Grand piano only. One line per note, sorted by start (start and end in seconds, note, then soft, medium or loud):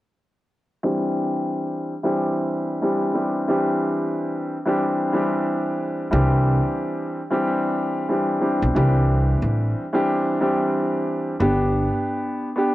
0.83 1.91 E3 medium
0.83 1.92 G3 medium
0.83 1.92 C4 medium
0.83 1.92 D4 medium
0.83 1.92 G4 medium
2.03 2.77 E3 medium
2.03 2.77 G3 medium
2.03 2.78 C4 medium
2.03 2.78 D4 medium
2.03 2.78 G4 loud
2.82 3.12 E3 medium
2.82 3.12 G3 medium
2.82 3.13 C4 medium
2.82 3.13 D4 medium
2.82 3.14 G4 medium
3.13 3.45 E3 medium
3.13 3.45 G3 medium
3.13 3.46 C4 medium
3.13 3.46 D4 medium
3.13 3.46 G4 medium
3.48 4.55 E3 medium
3.48 4.56 G3 medium
3.48 4.56 C4 medium
3.48 4.56 D4 medium
3.48 4.57 G4 loud
4.65 5.09 E3 medium
4.65 5.10 G3 medium
4.65 5.10 C4 medium
4.65 5.10 D4 medium
4.65 5.10 G4 loud
5.13 6.05 E3 medium
5.13 6.05 G3 medium
5.13 6.06 C4 medium
5.13 6.06 D4 medium
5.13 6.06 G4 medium
6.11 7.19 E3 medium
6.11 7.19 G3 medium
6.11 7.19 C4 medium
6.11 7.20 D4 medium
6.11 7.20 G4 medium
7.30 8.05 E3 medium
7.30 8.05 G3 medium
7.30 8.05 C4 medium
7.30 8.05 D4 medium
7.30 8.06 G4 loud
8.09 8.39 E3 medium
8.09 8.40 G3 medium
8.09 8.40 C4 medium
8.09 8.41 D4 medium
8.09 8.41 G4 medium
8.41 8.72 E3 medium
8.41 8.73 G3 medium
8.41 8.73 C4 medium
8.41 8.73 D4 medium
8.41 8.74 G4 medium
8.75 9.83 E3 medium
8.75 9.83 G3 medium
8.75 9.83 C4 medium
8.75 9.84 D4 medium
8.75 9.84 G4 medium
9.93 10.37 E3 medium
9.93 10.37 G3 medium
9.93 10.37 C4 medium
9.93 10.38 D4 medium
9.93 10.38 G4 loud
10.40 11.33 E3 medium
10.40 11.33 G3 medium
10.40 11.33 C4 medium
10.40 11.33 D4 medium
10.40 11.34 G4 medium
11.40 12.47 B3 medium
11.40 12.47 D4 medium
11.40 12.48 G4 medium
12.56 12.75 B3 medium
12.56 12.75 D4 medium
12.56 12.75 G4 medium